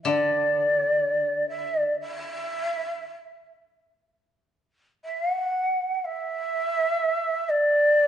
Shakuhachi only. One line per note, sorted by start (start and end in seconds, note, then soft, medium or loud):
0.03 0.09 E5 medium
0.08 1.48 D5 loud
1.49 1.80 E5 loud
1.80 1.96 D5 loud
2.01 3.46 E5 loud
5.05 5.31 E5 medium
5.31 5.94 F#5 medium
5.94 6.06 F#5 medium
6.05 7.51 E5 loud
7.49 8.07 D5 loud